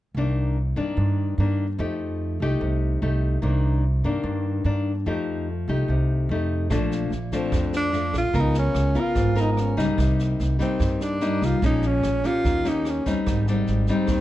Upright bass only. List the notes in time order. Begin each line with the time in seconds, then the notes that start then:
0.14 C2
0.76 G2
0.97 G2
1.38 G2
1.79 F2
2.40 C2
2.61 C2
3.02 C2
3.43 C2
4.04 G2
4.24 G2
4.64 G2
5.06 F2
5.68 C2
5.88 C2
6.29 F2
6.71 A#1
7.10 A#1
7.52 F2
8.14 A#1
8.34 C#2
8.74 C#2
9.16 G#1
9.78 C#2
9.98 C2
10.40 C2
10.80 G2
11.42 C2
11.62 A#1
12.05 A#1
12.45 D#2
13.06 D#2
13.26 G#1
13.68 G#1
14.08 D#2